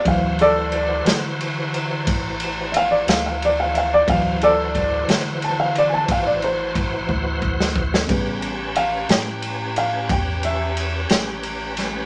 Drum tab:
RD |x-x-x-x-x-x-x-x-x-x-x-x-|x-x-x-x-x-x-x-x-x-------|x-x-x-x-x-x-x-x-x-x-x-x-|
SD |------o-----------o-----|------o--------------o-o|------o-----------o---o-|
BD |o-----------o-----------|o---o-------o---o-o-o-o-|o-----------o-----------|